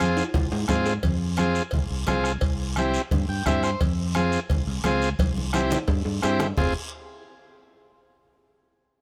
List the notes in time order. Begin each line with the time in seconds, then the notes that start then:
Already playing: F2 F4
0.00 C4 F4 G#4, bombo rim, high conga, short guiro
0.17 high timbale, short guiro
0.34 C2, bombo low, cowbell, high conga, low conga, high timbale, long guiro
0.52 G#2, high timbale
0.68 G#2 C4 F4 G#4, bombo low, bombo rim, cowbell, high conga, low timbale, short guiro
0.86 low timbale, short guiro
1.03 F2, bombo low, cowbell, high conga, low conga, long guiro
1.37 C4 F4 G#4, bombo rim, cowbell, high conga, short guiro
1.55 short guiro
1.71 C2, bombo low, cowbell, high conga, low conga, long guiro
1.90 C2
2.07 C2 C4 F4 G#4, bombo rim, cowbell, high conga, low conga, low timbale, short guiro
2.24 bombo rim, short guiro
2.41 C2, bombo low, cowbell, high conga, long guiro
2.76 C4 E4 G4, bombo rim, cowbell, high conga, short guiro
2.94 short guiro
3.11 G2, bombo low, cowbell, high conga, low conga, long guiro
3.29 G2 G5
3.46 G2 C4 E4 G4 E5, bombo low, bombo rim, cowbell, high conga, low conga, low timbale, short guiro
3.63 C5, bombo rim, short guiro
3.81 F2, bombo low, cowbell, high conga, low conga, long guiro
4.15 C4 F4 G#4, bombo rim, cowbell, high conga, short guiro
4.32 short guiro
4.50 C2, bombo low, cowbell, high conga, low conga, long guiro
4.67 C2
4.84 C#2 C4 F4 G#4, bombo rim, cowbell, high conga, low timbale, short guiro
5.02 short guiro
5.19 C2, bombo low, cowbell, high conga, long guiro
5.37 high conga
5.53 C4 E4 G4, bombo rim, cowbell, high conga, high timbale, short guiro
5.70 low conga, high timbale, short guiro
5.88 G2, bombo low, cowbell, low timbale, long guiro
6.05 G2, low timbale
6.22 G2 C4 E4 G4, bombo rim, cowbell, low timbale, short guiro
6.39 bombo rim, low conga, low timbale, short guiro
6.57 F1 C4 F4 G#4, bombo low, low conga, low timbale, long guiro